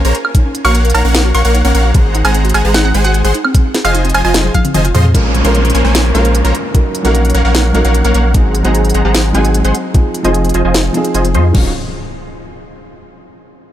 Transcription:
0.05 A#1 A#3 G#4 A#4 C5 C#5 A#5, closed hi-hat
0.15 A#4, closed hi-hat
0.25 A#4, high woodblock
0.35 D#4, kick, closed hi-hat
0.45 C#4
0.55 C#4, closed hi-hat
0.65 A#1 A#3 F#4 A#4 C#5 F5 F#5 C#6, closed hi-hat, high woodblock
0.75 A#4, closed hi-hat
0.85 A#4, closed hi-hat
0.90 closed hi-hat
0.94 A#1 A#3 D#4 A#4 C#5 F5 F#5 A#5, closed hi-hat, high woodblock
1.05 A#1 A#3 C#4 A#4 C#5 F5 F#5
1.15 snare, closed hi-hat
1.25 F#4
1.35 A#1 A#3 A#4 C#5 F5 F#5 C#6, closed hi-hat
1.45 A#1 A#3 A#4 C#5 F5 F#5, closed hi-hat
1.55 D#4, closed hi-hat
1.65 A#1 A#3 C#4 A#4 C#5 F5 F#5, closed hi-hat
1.75 A#1 A#3 C#4 A#4 C#5 F5 F#5, closed hi-hat
1.85 F#4
1.94 G#1 G#3 G#4 C5 F#5 A#5, kick, closed hi-hat
2.05 G#4
2.15 D#4, closed hi-hat
2.24 G#1 G#3 C4 G#4 C5 F#5 G#5 A#5, closed hi-hat, high woodblock
2.34 C4, closed hi-hat
2.45 F#4, closed hi-hat
2.49 closed hi-hat
2.54 G#1 G#3 G#4 C5 F#5 G#5 A#5, closed hi-hat, high woodblock
2.65 G#1 G#3 G#4 C5 F#5 A#5
2.74 D#4 F#5, snare, closed hi-hat
2.85 C4 F#5
2.94 G#1 G#3 C4 G#4 C5 F#5 G#5, closed hi-hat
3.04 F#4 F#5, closed hi-hat
3.14 G#4, closed hi-hat
3.25 G#1 G#3 G#4 C5 F#5 C6, closed hi-hat
3.34 D#4, closed hi-hat
3.45 C4, high woodblock
3.55 kick, closed hi-hat
3.64 F4
3.74 G#4, snare, closed hi-hat
3.85 F1 F3 F4 G#4 C5 D#5 F5 G#5, closed hi-hat, high woodblock
3.95 D#4, closed hi-hat
4.05 C4, closed hi-hat
4.10 closed hi-hat
4.14 F1 F3 C4 F4 C5 D#5 G#5, closed hi-hat, high woodblock
4.25 F1 F3 F4 C5 D#5 G#5
4.34 G#4, snare, closed hi-hat, high tom
4.45 G#4, high tom
4.54 D#4 F5, kick, closed hi-hat, high tom
4.65 C4, closed hi-hat, mid tom
4.74 F1 F3 C4 F4 C5 D#5 G#5, closed hi-hat, mid tom
4.85 F4, closed hi-hat
4.95 F2 F3 F4 G#4 C5 D#5 C6, closed hi-hat, mid tom
5.05 G#4, mid tom
5.14 A#1 G#3 A#3 C#4 F4 A#4 C5 C#5 G#5, kick, closed hi-hat, downlifter
5.35 closed hi-hat
5.43 A#1 G#3 A#3 C#4 F4 A#4 C5 C#5 C6, closed hi-hat
5.47 A#4
5.55 closed hi-hat
5.65 closed hi-hat
5.70 closed hi-hat
5.75 A#1 A#3 A#4 C5 C#5 G#5, closed hi-hat
5.85 A#1 A#3 A#4 C5 C#5 G#5
5.95 snare, closed hi-hat
6.13 A#1 G#3 A#3 C#4 F4 A#4 C5 C#5 F5, closed hi-hat
6.25 closed hi-hat
6.35 closed hi-hat
6.45 A#1 A#3 A#4 C5 C#5 A#5, closed hi-hat
6.55 closed hi-hat
6.74 F#3 C#4 D#4 A#4, kick, closed hi-hat
6.95 closed hi-hat
7.03 A#1 F#3 A#3 C#4 D#4 A#4 C#5 F5 F#5, closed hi-hat
7.07 A#4
7.15 closed hi-hat
7.25 closed hi-hat
7.30 closed hi-hat
7.35 A#1 A#3 A#4 C#5 F5 F#5, closed hi-hat
7.45 A#1 A#3 A#4 C#5 F5 F#5
7.55 snare, closed hi-hat
7.73 A#1 F#3 A#3 C#4 D#4 A#4 C#5 F5 F#5, closed hi-hat
7.77 A#4
7.85 A#1 A#3 A#4 C#5 F5 F#5, closed hi-hat
7.95 closed hi-hat
8.05 A#1 A#3 A#4 C#5 F5 F#5, closed hi-hat
8.14 A#1 A#3 A#4 C#5 F5 F#5, closed hi-hat
8.34 G#1 F#3 G#3 C4 D#4 G#4 C5 F#5 A#5, kick, closed hi-hat
8.55 closed hi-hat
8.63 G#1 F#3 G#3 C4 D#4 G#4 C5 F#5 A#5, closed hi-hat
8.67 G#4
8.75 closed hi-hat
8.85 closed hi-hat
8.90 closed hi-hat
8.94 G#1 G#3 G#4 C5 F#5 A#5, closed hi-hat
9.05 G#1 G#3 G#4 C5 F#5 A#5
9.15 snare, closed hi-hat
9.33 G#1 F#3 G#3 C4 D#4 G#4 C5 F#5 G#5, closed hi-hat
9.45 closed hi-hat
9.54 closed hi-hat
9.65 G#1 G#3 G#4 C5 F#5 C6, closed hi-hat
9.75 closed hi-hat
9.94 F3 C4 D#4 G#4, kick, closed hi-hat
10.14 closed hi-hat
10.23 F1 F3 C4 D#4 F4 C5 D#5 G#5, closed hi-hat
10.27 G#4
10.34 closed hi-hat
10.45 closed hi-hat
10.49 closed hi-hat
10.54 F1 F3 F4 C5 D#5 G#5, closed hi-hat
10.65 F1 F3 F4 C5 D#5 G#5
10.74 snare, closed hi-hat
10.93 F3 C4 D#4, closed hi-hat
10.97 G#4
11.05 closed hi-hat
11.15 F1 F3 F4 C5 D#5 G#5, closed hi-hat
11.25 closed hi-hat
11.35 F2 F3 F4 C5 D#5 C6, closed hi-hat
11.52 D#1 D#3 F#3 D#4 F#4 C#5 F5, kick, crash, impact
11.56 C#4 F4

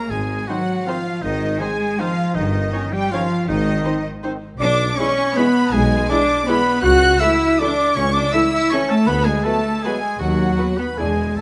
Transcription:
Already playing: A#3 A#4 A#5
0.10 G#1 G#3 G#4 G#5
0.47 D#3 F#3 C4 D#4 F#4 C5 F#5
0.85 D#3 F3 C4 D#4 F4 C5 F5
1.22 G#1 D#3 D#4 D#5
1.59 D#3 G#3 C4 D#4 G#4 C5 G#5
1.98 D#3 F3 C4 D#4 F4 C5 F5
2.34 G1 D#3 D#4 D#5
2.73 D#3 C#4 D#4 C#5
2.92 G3 G4 G5
3.11 D#3 F3 C#4 D#4 F4 C#5 F5
3.47 G#1 D#3 D#4 D#5
3.85 D#3 C4 D#4 C5
4.23 D#3 C4 D#4 C5
4.59 B1 D4 D5 D6
4.97 E3 G#3 C#4 E4 G#4 C#5 C#6
5.36 E3 G#3 B3 E4 G#4 B4 B5
5.72 B1 G#3 G#4 G#5
6.09 E3 G#3 D4 E4 G#4 D5 D6
6.47 E3 G#3 B3 E4 G#4 B4 B5
6.82 C#2 F#4 F#5 F#6
7.20 E3 A3 E4 A4 E5 E6
7.59 E3 A3 D4 E4 A4 D5 D6
7.95 C#2 C#4 C#5 C#6
8.12 D4 D5 D6
8.32 E3 A3 E4 A4 E5 E6
8.50 E4 E5 E6
8.69 E3 A3 C#4 E4 A4 C#5 C#6
8.89 A3 A4 A5
9.06 D2 B3 B4 B5
9.24 G#3 G#4 G#5
9.44 F#3 A3 B3 F#4 A4 B4 A5
9.83 F#3 G#3 B3 F#4 G#4 B4 G#5
10.19 D#2 F#3 F#4 F#5
10.58 F#3 B3 F#4 B4
10.77 B3 B4 B5
10.98 E1 E2 E3 G#3 D4 E4 G#4 D5 G#5
11.37 A1 A3 A4 A5

